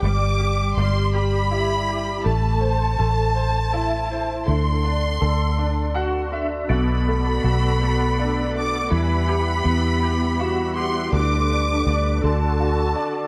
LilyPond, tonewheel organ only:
\new Staff \with { instrumentName = "Tonewheel organ" } { \time 6/8 \key g \major \tempo 4. = 54 << { r2. | r2. | r2. | <a' d''>2. |
g2. | b'4. <fis' a'>4. | } \\ { r2. | r2. | r2. | <b fis''>2. |
<e e'>2. | <d d'>2. | } >> }